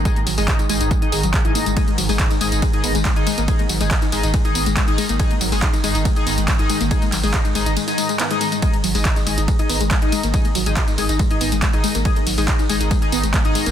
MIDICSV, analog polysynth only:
0, 0, Header, 1, 2, 480
1, 0, Start_track
1, 0, Tempo, 428571
1, 58, Time_signature, 4, 2, 24, 8
1, 15359, End_track
2, 0, Start_track
2, 0, Title_t, "Analog polysynth"
2, 0, Program_c, 0, 90
2, 58, Note_on_c, 0, 68, 78
2, 59, Note_on_c, 0, 63, 83
2, 59, Note_on_c, 0, 75, 93
2, 195, Note_off_c, 0, 63, 0
2, 195, Note_off_c, 0, 68, 0
2, 195, Note_off_c, 0, 75, 0
2, 423, Note_on_c, 0, 63, 81
2, 423, Note_on_c, 0, 68, 70
2, 423, Note_on_c, 0, 75, 88
2, 634, Note_off_c, 0, 63, 0
2, 634, Note_off_c, 0, 68, 0
2, 634, Note_off_c, 0, 75, 0
2, 777, Note_on_c, 0, 75, 86
2, 778, Note_on_c, 0, 63, 80
2, 778, Note_on_c, 0, 68, 73
2, 991, Note_off_c, 0, 63, 0
2, 991, Note_off_c, 0, 68, 0
2, 991, Note_off_c, 0, 75, 0
2, 1142, Note_on_c, 0, 75, 94
2, 1143, Note_on_c, 0, 63, 83
2, 1143, Note_on_c, 0, 68, 79
2, 1354, Note_off_c, 0, 63, 0
2, 1354, Note_off_c, 0, 68, 0
2, 1354, Note_off_c, 0, 75, 0
2, 1622, Note_on_c, 0, 63, 97
2, 1622, Note_on_c, 0, 68, 89
2, 1622, Note_on_c, 0, 75, 106
2, 1833, Note_off_c, 0, 68, 0
2, 1834, Note_off_c, 0, 63, 0
2, 1834, Note_off_c, 0, 75, 0
2, 1977, Note_on_c, 0, 68, 78
2, 1978, Note_on_c, 0, 63, 86
2, 1978, Note_on_c, 0, 75, 94
2, 2115, Note_off_c, 0, 63, 0
2, 2115, Note_off_c, 0, 68, 0
2, 2115, Note_off_c, 0, 75, 0
2, 2343, Note_on_c, 0, 63, 78
2, 2343, Note_on_c, 0, 68, 73
2, 2343, Note_on_c, 0, 75, 87
2, 2554, Note_off_c, 0, 63, 0
2, 2554, Note_off_c, 0, 68, 0
2, 2554, Note_off_c, 0, 75, 0
2, 2698, Note_on_c, 0, 63, 78
2, 2698, Note_on_c, 0, 68, 77
2, 2698, Note_on_c, 0, 75, 91
2, 2911, Note_off_c, 0, 63, 0
2, 2911, Note_off_c, 0, 68, 0
2, 2911, Note_off_c, 0, 75, 0
2, 3062, Note_on_c, 0, 68, 75
2, 3063, Note_on_c, 0, 63, 85
2, 3063, Note_on_c, 0, 75, 94
2, 3274, Note_off_c, 0, 63, 0
2, 3274, Note_off_c, 0, 68, 0
2, 3274, Note_off_c, 0, 75, 0
2, 3542, Note_on_c, 0, 63, 99
2, 3542, Note_on_c, 0, 68, 91
2, 3542, Note_on_c, 0, 75, 108
2, 3753, Note_off_c, 0, 63, 0
2, 3753, Note_off_c, 0, 68, 0
2, 3753, Note_off_c, 0, 75, 0
2, 3897, Note_on_c, 0, 63, 84
2, 3898, Note_on_c, 0, 68, 76
2, 3898, Note_on_c, 0, 75, 97
2, 4035, Note_off_c, 0, 63, 0
2, 4035, Note_off_c, 0, 68, 0
2, 4035, Note_off_c, 0, 75, 0
2, 4263, Note_on_c, 0, 63, 78
2, 4263, Note_on_c, 0, 68, 71
2, 4263, Note_on_c, 0, 75, 87
2, 4474, Note_off_c, 0, 63, 0
2, 4474, Note_off_c, 0, 68, 0
2, 4474, Note_off_c, 0, 75, 0
2, 4618, Note_on_c, 0, 63, 80
2, 4618, Note_on_c, 0, 68, 71
2, 4618, Note_on_c, 0, 75, 89
2, 4831, Note_off_c, 0, 63, 0
2, 4831, Note_off_c, 0, 68, 0
2, 4831, Note_off_c, 0, 75, 0
2, 4983, Note_on_c, 0, 63, 83
2, 4983, Note_on_c, 0, 68, 80
2, 4983, Note_on_c, 0, 75, 92
2, 5194, Note_off_c, 0, 63, 0
2, 5194, Note_off_c, 0, 68, 0
2, 5194, Note_off_c, 0, 75, 0
2, 5462, Note_on_c, 0, 63, 100
2, 5462, Note_on_c, 0, 68, 88
2, 5462, Note_on_c, 0, 75, 107
2, 5673, Note_off_c, 0, 63, 0
2, 5674, Note_off_c, 0, 68, 0
2, 5674, Note_off_c, 0, 75, 0
2, 5818, Note_on_c, 0, 63, 86
2, 5818, Note_on_c, 0, 68, 78
2, 5818, Note_on_c, 0, 75, 93
2, 5955, Note_off_c, 0, 63, 0
2, 5955, Note_off_c, 0, 68, 0
2, 5955, Note_off_c, 0, 75, 0
2, 6183, Note_on_c, 0, 63, 77
2, 6183, Note_on_c, 0, 68, 73
2, 6183, Note_on_c, 0, 75, 87
2, 6394, Note_off_c, 0, 63, 0
2, 6394, Note_off_c, 0, 68, 0
2, 6394, Note_off_c, 0, 75, 0
2, 6538, Note_on_c, 0, 63, 82
2, 6538, Note_on_c, 0, 68, 75
2, 6538, Note_on_c, 0, 75, 89
2, 6751, Note_off_c, 0, 63, 0
2, 6751, Note_off_c, 0, 68, 0
2, 6751, Note_off_c, 0, 75, 0
2, 6902, Note_on_c, 0, 68, 77
2, 6902, Note_on_c, 0, 75, 89
2, 6903, Note_on_c, 0, 63, 83
2, 7113, Note_off_c, 0, 75, 0
2, 7114, Note_off_c, 0, 63, 0
2, 7114, Note_off_c, 0, 68, 0
2, 7382, Note_on_c, 0, 63, 99
2, 7382, Note_on_c, 0, 68, 90
2, 7382, Note_on_c, 0, 75, 107
2, 7593, Note_off_c, 0, 68, 0
2, 7593, Note_off_c, 0, 75, 0
2, 7594, Note_off_c, 0, 63, 0
2, 7738, Note_on_c, 0, 63, 86
2, 7738, Note_on_c, 0, 68, 80
2, 7738, Note_on_c, 0, 75, 95
2, 7875, Note_off_c, 0, 63, 0
2, 7875, Note_off_c, 0, 68, 0
2, 7875, Note_off_c, 0, 75, 0
2, 8102, Note_on_c, 0, 63, 80
2, 8102, Note_on_c, 0, 68, 74
2, 8102, Note_on_c, 0, 75, 87
2, 8313, Note_off_c, 0, 63, 0
2, 8313, Note_off_c, 0, 68, 0
2, 8313, Note_off_c, 0, 75, 0
2, 8458, Note_on_c, 0, 63, 80
2, 8458, Note_on_c, 0, 68, 72
2, 8458, Note_on_c, 0, 75, 94
2, 8671, Note_off_c, 0, 63, 0
2, 8671, Note_off_c, 0, 68, 0
2, 8671, Note_off_c, 0, 75, 0
2, 8823, Note_on_c, 0, 63, 85
2, 8823, Note_on_c, 0, 68, 77
2, 8823, Note_on_c, 0, 75, 90
2, 9034, Note_off_c, 0, 63, 0
2, 9034, Note_off_c, 0, 68, 0
2, 9034, Note_off_c, 0, 75, 0
2, 9303, Note_on_c, 0, 63, 101
2, 9303, Note_on_c, 0, 68, 89
2, 9303, Note_on_c, 0, 75, 107
2, 9514, Note_off_c, 0, 63, 0
2, 9514, Note_off_c, 0, 68, 0
2, 9514, Note_off_c, 0, 75, 0
2, 9658, Note_on_c, 0, 63, 86
2, 9658, Note_on_c, 0, 68, 79
2, 9658, Note_on_c, 0, 75, 97
2, 9795, Note_off_c, 0, 63, 0
2, 9795, Note_off_c, 0, 68, 0
2, 9795, Note_off_c, 0, 75, 0
2, 10022, Note_on_c, 0, 63, 78
2, 10023, Note_on_c, 0, 68, 74
2, 10023, Note_on_c, 0, 75, 86
2, 10234, Note_off_c, 0, 63, 0
2, 10234, Note_off_c, 0, 68, 0
2, 10234, Note_off_c, 0, 75, 0
2, 10378, Note_on_c, 0, 63, 81
2, 10378, Note_on_c, 0, 68, 75
2, 10378, Note_on_c, 0, 75, 89
2, 10591, Note_off_c, 0, 63, 0
2, 10591, Note_off_c, 0, 68, 0
2, 10591, Note_off_c, 0, 75, 0
2, 10742, Note_on_c, 0, 68, 79
2, 10743, Note_on_c, 0, 63, 87
2, 10743, Note_on_c, 0, 75, 91
2, 10954, Note_off_c, 0, 63, 0
2, 10954, Note_off_c, 0, 68, 0
2, 10954, Note_off_c, 0, 75, 0
2, 11223, Note_on_c, 0, 63, 96
2, 11223, Note_on_c, 0, 68, 91
2, 11223, Note_on_c, 0, 75, 110
2, 11434, Note_off_c, 0, 63, 0
2, 11434, Note_off_c, 0, 68, 0
2, 11434, Note_off_c, 0, 75, 0
2, 11578, Note_on_c, 0, 63, 87
2, 11578, Note_on_c, 0, 68, 77
2, 11578, Note_on_c, 0, 75, 95
2, 11715, Note_off_c, 0, 63, 0
2, 11715, Note_off_c, 0, 68, 0
2, 11715, Note_off_c, 0, 75, 0
2, 11943, Note_on_c, 0, 63, 78
2, 11943, Note_on_c, 0, 68, 76
2, 11943, Note_on_c, 0, 75, 90
2, 12154, Note_off_c, 0, 63, 0
2, 12154, Note_off_c, 0, 68, 0
2, 12154, Note_off_c, 0, 75, 0
2, 12298, Note_on_c, 0, 63, 82
2, 12298, Note_on_c, 0, 68, 75
2, 12298, Note_on_c, 0, 75, 90
2, 12511, Note_off_c, 0, 63, 0
2, 12511, Note_off_c, 0, 68, 0
2, 12511, Note_off_c, 0, 75, 0
2, 12662, Note_on_c, 0, 63, 83
2, 12662, Note_on_c, 0, 68, 77
2, 12663, Note_on_c, 0, 75, 93
2, 12873, Note_off_c, 0, 68, 0
2, 12874, Note_off_c, 0, 63, 0
2, 12874, Note_off_c, 0, 75, 0
2, 13142, Note_on_c, 0, 63, 98
2, 13142, Note_on_c, 0, 68, 90
2, 13143, Note_on_c, 0, 75, 104
2, 13354, Note_off_c, 0, 63, 0
2, 13354, Note_off_c, 0, 68, 0
2, 13354, Note_off_c, 0, 75, 0
2, 13498, Note_on_c, 0, 63, 85
2, 13498, Note_on_c, 0, 68, 81
2, 13498, Note_on_c, 0, 75, 97
2, 13635, Note_off_c, 0, 63, 0
2, 13635, Note_off_c, 0, 68, 0
2, 13635, Note_off_c, 0, 75, 0
2, 13862, Note_on_c, 0, 68, 74
2, 13862, Note_on_c, 0, 75, 85
2, 13863, Note_on_c, 0, 63, 77
2, 14074, Note_off_c, 0, 63, 0
2, 14074, Note_off_c, 0, 68, 0
2, 14074, Note_off_c, 0, 75, 0
2, 14218, Note_on_c, 0, 63, 83
2, 14218, Note_on_c, 0, 68, 74
2, 14218, Note_on_c, 0, 75, 90
2, 14431, Note_off_c, 0, 63, 0
2, 14431, Note_off_c, 0, 68, 0
2, 14431, Note_off_c, 0, 75, 0
2, 14582, Note_on_c, 0, 63, 84
2, 14583, Note_on_c, 0, 68, 74
2, 14583, Note_on_c, 0, 75, 93
2, 14794, Note_off_c, 0, 63, 0
2, 14794, Note_off_c, 0, 68, 0
2, 14794, Note_off_c, 0, 75, 0
2, 15063, Note_on_c, 0, 63, 100
2, 15063, Note_on_c, 0, 68, 91
2, 15063, Note_on_c, 0, 75, 104
2, 15274, Note_off_c, 0, 63, 0
2, 15274, Note_off_c, 0, 68, 0
2, 15274, Note_off_c, 0, 75, 0
2, 15359, End_track
0, 0, End_of_file